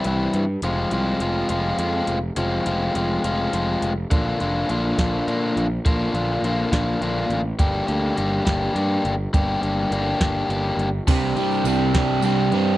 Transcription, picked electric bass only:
0, 0, Header, 1, 2, 480
1, 0, Start_track
1, 0, Tempo, 580271
1, 523, Time_signature, 6, 3, 24, 8
1, 10567, End_track
2, 0, Start_track
2, 0, Title_t, "Picked electric bass"
2, 0, Program_c, 0, 34
2, 44, Note_on_c, 0, 36, 72
2, 221, Note_off_c, 0, 36, 0
2, 282, Note_on_c, 0, 43, 77
2, 459, Note_off_c, 0, 43, 0
2, 516, Note_on_c, 0, 29, 82
2, 696, Note_off_c, 0, 29, 0
2, 763, Note_on_c, 0, 36, 77
2, 940, Note_off_c, 0, 36, 0
2, 996, Note_on_c, 0, 29, 69
2, 1176, Note_off_c, 0, 29, 0
2, 1240, Note_on_c, 0, 29, 79
2, 1419, Note_off_c, 0, 29, 0
2, 1477, Note_on_c, 0, 41, 73
2, 1657, Note_off_c, 0, 41, 0
2, 1719, Note_on_c, 0, 29, 71
2, 1898, Note_off_c, 0, 29, 0
2, 1957, Note_on_c, 0, 29, 79
2, 2136, Note_off_c, 0, 29, 0
2, 2207, Note_on_c, 0, 29, 73
2, 2383, Note_off_c, 0, 29, 0
2, 2446, Note_on_c, 0, 29, 77
2, 2622, Note_off_c, 0, 29, 0
2, 2685, Note_on_c, 0, 29, 80
2, 2861, Note_off_c, 0, 29, 0
2, 2924, Note_on_c, 0, 29, 75
2, 3101, Note_off_c, 0, 29, 0
2, 3163, Note_on_c, 0, 29, 71
2, 3341, Note_off_c, 0, 29, 0
2, 3404, Note_on_c, 0, 34, 79
2, 3582, Note_off_c, 0, 34, 0
2, 3652, Note_on_c, 0, 29, 75
2, 3826, Note_off_c, 0, 29, 0
2, 3888, Note_on_c, 0, 34, 70
2, 4064, Note_off_c, 0, 34, 0
2, 4121, Note_on_c, 0, 34, 76
2, 4300, Note_off_c, 0, 34, 0
2, 4364, Note_on_c, 0, 46, 70
2, 4542, Note_off_c, 0, 46, 0
2, 4604, Note_on_c, 0, 34, 75
2, 4782, Note_off_c, 0, 34, 0
2, 4844, Note_on_c, 0, 34, 81
2, 5022, Note_off_c, 0, 34, 0
2, 5079, Note_on_c, 0, 34, 78
2, 5259, Note_off_c, 0, 34, 0
2, 5316, Note_on_c, 0, 34, 74
2, 5497, Note_off_c, 0, 34, 0
2, 5561, Note_on_c, 0, 34, 81
2, 5740, Note_off_c, 0, 34, 0
2, 5799, Note_on_c, 0, 34, 76
2, 5978, Note_off_c, 0, 34, 0
2, 6038, Note_on_c, 0, 33, 72
2, 6218, Note_off_c, 0, 33, 0
2, 6281, Note_on_c, 0, 31, 86
2, 6460, Note_off_c, 0, 31, 0
2, 6523, Note_on_c, 0, 38, 77
2, 6701, Note_off_c, 0, 38, 0
2, 6767, Note_on_c, 0, 31, 76
2, 6944, Note_off_c, 0, 31, 0
2, 7002, Note_on_c, 0, 31, 75
2, 7181, Note_off_c, 0, 31, 0
2, 7242, Note_on_c, 0, 43, 75
2, 7420, Note_off_c, 0, 43, 0
2, 7484, Note_on_c, 0, 31, 78
2, 7662, Note_off_c, 0, 31, 0
2, 7724, Note_on_c, 0, 31, 88
2, 7902, Note_off_c, 0, 31, 0
2, 7962, Note_on_c, 0, 31, 73
2, 8140, Note_off_c, 0, 31, 0
2, 8199, Note_on_c, 0, 31, 81
2, 8378, Note_off_c, 0, 31, 0
2, 8443, Note_on_c, 0, 31, 81
2, 8620, Note_off_c, 0, 31, 0
2, 8679, Note_on_c, 0, 31, 79
2, 8857, Note_off_c, 0, 31, 0
2, 8909, Note_on_c, 0, 31, 77
2, 9091, Note_off_c, 0, 31, 0
2, 9161, Note_on_c, 0, 36, 95
2, 9383, Note_off_c, 0, 36, 0
2, 9394, Note_on_c, 0, 36, 83
2, 9618, Note_off_c, 0, 36, 0
2, 9633, Note_on_c, 0, 36, 92
2, 9858, Note_off_c, 0, 36, 0
2, 9881, Note_on_c, 0, 36, 87
2, 10101, Note_off_c, 0, 36, 0
2, 10115, Note_on_c, 0, 36, 88
2, 10338, Note_off_c, 0, 36, 0
2, 10353, Note_on_c, 0, 43, 82
2, 10567, Note_off_c, 0, 43, 0
2, 10567, End_track
0, 0, End_of_file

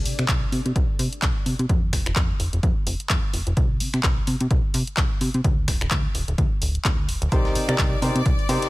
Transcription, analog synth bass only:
0, 0, Header, 1, 2, 480
1, 0, Start_track
1, 0, Key_signature, -3, "minor"
1, 0, Tempo, 468750
1, 1735, Time_signature, 4, 2, 24, 8
1, 8900, End_track
2, 0, Start_track
2, 0, Title_t, "Analog synth bass"
2, 0, Program_c, 0, 38
2, 54, Note_on_c, 0, 48, 92
2, 143, Note_off_c, 0, 48, 0
2, 191, Note_on_c, 0, 48, 83
2, 259, Note_off_c, 0, 48, 0
2, 295, Note_on_c, 0, 36, 104
2, 463, Note_off_c, 0, 36, 0
2, 535, Note_on_c, 0, 48, 93
2, 624, Note_off_c, 0, 48, 0
2, 672, Note_on_c, 0, 48, 83
2, 739, Note_off_c, 0, 48, 0
2, 775, Note_on_c, 0, 36, 97
2, 864, Note_off_c, 0, 36, 0
2, 1016, Note_on_c, 0, 48, 106
2, 1104, Note_off_c, 0, 48, 0
2, 1255, Note_on_c, 0, 36, 96
2, 1344, Note_off_c, 0, 36, 0
2, 1494, Note_on_c, 0, 48, 83
2, 1583, Note_off_c, 0, 48, 0
2, 1631, Note_on_c, 0, 48, 90
2, 1698, Note_off_c, 0, 48, 0
2, 1735, Note_on_c, 0, 41, 102
2, 1974, Note_on_c, 0, 29, 94
2, 1989, Note_off_c, 0, 41, 0
2, 2063, Note_off_c, 0, 29, 0
2, 2112, Note_on_c, 0, 29, 85
2, 2179, Note_off_c, 0, 29, 0
2, 2215, Note_on_c, 0, 41, 107
2, 2383, Note_off_c, 0, 41, 0
2, 2456, Note_on_c, 0, 29, 92
2, 2544, Note_off_c, 0, 29, 0
2, 2591, Note_on_c, 0, 29, 85
2, 2659, Note_off_c, 0, 29, 0
2, 2695, Note_on_c, 0, 41, 100
2, 2784, Note_off_c, 0, 41, 0
2, 2935, Note_on_c, 0, 29, 104
2, 3024, Note_off_c, 0, 29, 0
2, 3175, Note_on_c, 0, 41, 91
2, 3264, Note_off_c, 0, 41, 0
2, 3415, Note_on_c, 0, 29, 84
2, 3504, Note_off_c, 0, 29, 0
2, 3551, Note_on_c, 0, 29, 89
2, 3619, Note_off_c, 0, 29, 0
2, 3654, Note_on_c, 0, 36, 101
2, 3895, Note_on_c, 0, 48, 94
2, 3911, Note_off_c, 0, 36, 0
2, 3984, Note_off_c, 0, 48, 0
2, 4032, Note_on_c, 0, 48, 83
2, 4099, Note_off_c, 0, 48, 0
2, 4134, Note_on_c, 0, 36, 103
2, 4302, Note_off_c, 0, 36, 0
2, 4375, Note_on_c, 0, 48, 90
2, 4464, Note_off_c, 0, 48, 0
2, 4512, Note_on_c, 0, 48, 82
2, 4579, Note_off_c, 0, 48, 0
2, 4614, Note_on_c, 0, 36, 95
2, 4703, Note_off_c, 0, 36, 0
2, 4856, Note_on_c, 0, 48, 105
2, 4944, Note_off_c, 0, 48, 0
2, 5095, Note_on_c, 0, 36, 96
2, 5184, Note_off_c, 0, 36, 0
2, 5336, Note_on_c, 0, 48, 89
2, 5424, Note_off_c, 0, 48, 0
2, 5471, Note_on_c, 0, 48, 86
2, 5539, Note_off_c, 0, 48, 0
2, 5575, Note_on_c, 0, 38, 101
2, 5815, Note_on_c, 0, 26, 93
2, 5831, Note_off_c, 0, 38, 0
2, 5904, Note_off_c, 0, 26, 0
2, 5951, Note_on_c, 0, 26, 84
2, 6019, Note_off_c, 0, 26, 0
2, 6055, Note_on_c, 0, 38, 104
2, 6222, Note_off_c, 0, 38, 0
2, 6295, Note_on_c, 0, 26, 94
2, 6384, Note_off_c, 0, 26, 0
2, 6432, Note_on_c, 0, 26, 81
2, 6499, Note_off_c, 0, 26, 0
2, 6535, Note_on_c, 0, 38, 94
2, 6624, Note_off_c, 0, 38, 0
2, 6775, Note_on_c, 0, 26, 92
2, 6943, Note_off_c, 0, 26, 0
2, 7015, Note_on_c, 0, 38, 85
2, 7254, Note_on_c, 0, 26, 90
2, 7270, Note_off_c, 0, 38, 0
2, 7343, Note_off_c, 0, 26, 0
2, 7390, Note_on_c, 0, 26, 101
2, 7458, Note_off_c, 0, 26, 0
2, 7495, Note_on_c, 0, 36, 97
2, 7733, Note_on_c, 0, 48, 92
2, 7749, Note_off_c, 0, 36, 0
2, 7823, Note_off_c, 0, 48, 0
2, 7869, Note_on_c, 0, 48, 87
2, 7937, Note_off_c, 0, 48, 0
2, 7975, Note_on_c, 0, 36, 103
2, 8143, Note_off_c, 0, 36, 0
2, 8212, Note_on_c, 0, 48, 90
2, 8302, Note_off_c, 0, 48, 0
2, 8349, Note_on_c, 0, 48, 83
2, 8417, Note_off_c, 0, 48, 0
2, 8455, Note_on_c, 0, 36, 97
2, 8544, Note_off_c, 0, 36, 0
2, 8692, Note_on_c, 0, 48, 105
2, 8782, Note_off_c, 0, 48, 0
2, 8900, End_track
0, 0, End_of_file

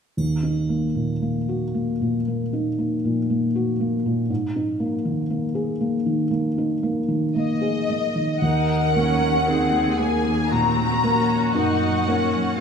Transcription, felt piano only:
0, 0, Header, 1, 2, 480
1, 0, Start_track
1, 0, Tempo, 1036269
1, 81, Time_signature, 4, 2, 24, 8
1, 1520, Tempo, 1011804
1, 2960, Tempo, 1047120
1, 5842, End_track
2, 0, Start_track
2, 0, Title_t, "Felt piano"
2, 0, Program_c, 0, 0
2, 80, Note_on_c, 0, 39, 27
2, 157, Control_c, 0, 64, 127
2, 199, Note_on_c, 0, 63, 23
2, 320, Note_on_c, 0, 58, 22
2, 394, Note_off_c, 0, 63, 0
2, 442, Note_on_c, 0, 46, 19
2, 515, Note_off_c, 0, 58, 0
2, 565, Note_on_c, 0, 58, 22
2, 636, Note_off_c, 0, 46, 0
2, 688, Note_on_c, 0, 66, 20
2, 758, Note_off_c, 0, 58, 0
2, 808, Note_on_c, 0, 58, 22
2, 879, Note_off_c, 0, 66, 0
2, 932, Note_on_c, 0, 46, 21
2, 999, Note_off_c, 0, 58, 0
2, 1027, Note_off_c, 0, 39, 0
2, 1053, Note_on_c, 0, 58, 22
2, 1120, Note_off_c, 0, 46, 0
2, 1172, Note_on_c, 0, 63, 21
2, 1240, Note_off_c, 0, 58, 0
2, 1289, Note_on_c, 0, 58, 23
2, 1358, Note_off_c, 0, 63, 0
2, 1412, Note_on_c, 0, 46, 23
2, 1476, Note_off_c, 0, 58, 0
2, 1528, Note_on_c, 0, 58, 26
2, 1598, Note_off_c, 0, 46, 0
2, 1649, Note_on_c, 0, 66, 25
2, 1718, Note_off_c, 0, 58, 0
2, 1766, Note_on_c, 0, 58, 26
2, 1838, Note_off_c, 0, 66, 0
2, 1887, Note_on_c, 0, 46, 26
2, 1956, Note_off_c, 0, 58, 0
2, 2003, Note_on_c, 0, 44, 33
2, 2004, Note_off_c, 0, 46, 0
2, 2008, Control_c, 0, 64, 0
2, 2072, Control_c, 0, 64, 127
2, 2126, Note_on_c, 0, 63, 27
2, 2240, Note_on_c, 0, 58, 29
2, 2312, Note_off_c, 0, 63, 0
2, 2360, Note_on_c, 0, 51, 27
2, 2430, Note_off_c, 0, 58, 0
2, 2479, Note_on_c, 0, 58, 32
2, 2550, Note_off_c, 0, 51, 0
2, 2595, Note_on_c, 0, 68, 30
2, 2671, Note_off_c, 0, 58, 0
2, 2717, Note_on_c, 0, 58, 33
2, 2790, Note_off_c, 0, 68, 0
2, 2839, Note_on_c, 0, 51, 30
2, 2912, Note_off_c, 0, 58, 0
2, 2943, Note_off_c, 0, 44, 0
2, 2955, Note_on_c, 0, 58, 32
2, 3031, Note_off_c, 0, 51, 0
2, 3080, Note_on_c, 0, 63, 29
2, 3147, Note_off_c, 0, 58, 0
2, 3195, Note_on_c, 0, 58, 34
2, 3270, Note_off_c, 0, 63, 0
2, 3311, Note_on_c, 0, 51, 28
2, 3388, Note_off_c, 0, 58, 0
2, 3437, Note_on_c, 0, 58, 31
2, 3508, Note_off_c, 0, 51, 0
2, 3555, Note_on_c, 0, 68, 29
2, 3634, Note_off_c, 0, 58, 0
2, 3684, Note_on_c, 0, 58, 25
2, 3756, Note_off_c, 0, 68, 0
2, 3803, Note_on_c, 0, 51, 25
2, 3881, Note_off_c, 0, 58, 0
2, 3923, Note_on_c, 0, 39, 30
2, 3927, Note_off_c, 0, 51, 0
2, 3938, Control_c, 0, 64, 0
2, 4021, Control_c, 0, 64, 127
2, 4170, Note_on_c, 0, 58, 24
2, 4170, Note_on_c, 0, 70, 25
2, 4391, Note_off_c, 0, 58, 0
2, 4391, Note_off_c, 0, 70, 0
2, 4406, Note_on_c, 0, 63, 24
2, 4409, Note_on_c, 0, 70, 27
2, 4628, Note_off_c, 0, 63, 0
2, 4629, Note_off_c, 0, 70, 0
2, 4645, Note_on_c, 0, 58, 24
2, 4647, Note_on_c, 0, 70, 28
2, 4864, Note_off_c, 0, 39, 0
2, 4865, Note_off_c, 0, 58, 0
2, 4866, Note_off_c, 0, 70, 0
2, 4886, Note_on_c, 0, 46, 24
2, 5123, Note_on_c, 0, 58, 24
2, 5123, Note_on_c, 0, 70, 26
2, 5267, Note_off_c, 0, 46, 0
2, 5343, Note_off_c, 0, 58, 0
2, 5343, Note_off_c, 0, 70, 0
2, 5359, Note_on_c, 0, 63, 25
2, 5363, Note_on_c, 0, 70, 27
2, 5581, Note_off_c, 0, 63, 0
2, 5583, Note_off_c, 0, 70, 0
2, 5600, Note_on_c, 0, 58, 24
2, 5602, Note_on_c, 0, 70, 25
2, 5820, Note_off_c, 0, 58, 0
2, 5821, Note_off_c, 0, 70, 0
2, 5842, End_track
0, 0, End_of_file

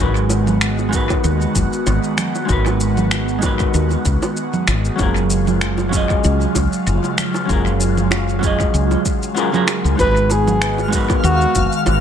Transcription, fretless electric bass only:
0, 0, Header, 1, 2, 480
1, 0, Start_track
1, 0, Tempo, 625000
1, 1912, Time_signature, 4, 2, 24, 8
1, 9220, End_track
2, 0, Start_track
2, 0, Title_t, "Fretless electric bass"
2, 0, Program_c, 0, 35
2, 0, Note_on_c, 0, 32, 96
2, 887, Note_off_c, 0, 32, 0
2, 953, Note_on_c, 0, 39, 86
2, 1110, Note_off_c, 0, 39, 0
2, 1192, Note_on_c, 0, 30, 79
2, 1274, Note_off_c, 0, 30, 0
2, 1433, Note_on_c, 0, 32, 88
2, 1515, Note_off_c, 0, 32, 0
2, 1913, Note_on_c, 0, 32, 89
2, 2807, Note_off_c, 0, 32, 0
2, 2872, Note_on_c, 0, 39, 78
2, 3030, Note_off_c, 0, 39, 0
2, 3113, Note_on_c, 0, 37, 89
2, 3194, Note_off_c, 0, 37, 0
2, 3590, Note_on_c, 0, 32, 97
2, 3749, Note_off_c, 0, 32, 0
2, 3833, Note_on_c, 0, 30, 89
2, 4727, Note_off_c, 0, 30, 0
2, 4796, Note_on_c, 0, 37, 93
2, 4952, Note_off_c, 0, 37, 0
2, 5033, Note_on_c, 0, 37, 87
2, 5114, Note_off_c, 0, 37, 0
2, 5273, Note_on_c, 0, 30, 92
2, 5354, Note_off_c, 0, 30, 0
2, 5754, Note_on_c, 0, 30, 92
2, 6647, Note_off_c, 0, 30, 0
2, 6710, Note_on_c, 0, 37, 78
2, 6869, Note_off_c, 0, 37, 0
2, 7559, Note_on_c, 0, 37, 71
2, 7629, Note_off_c, 0, 37, 0
2, 7672, Note_on_c, 0, 32, 85
2, 8567, Note_off_c, 0, 32, 0
2, 8629, Note_on_c, 0, 39, 89
2, 8788, Note_off_c, 0, 39, 0
2, 8871, Note_on_c, 0, 30, 83
2, 8954, Note_off_c, 0, 30, 0
2, 9112, Note_on_c, 0, 32, 89
2, 9194, Note_off_c, 0, 32, 0
2, 9220, End_track
0, 0, End_of_file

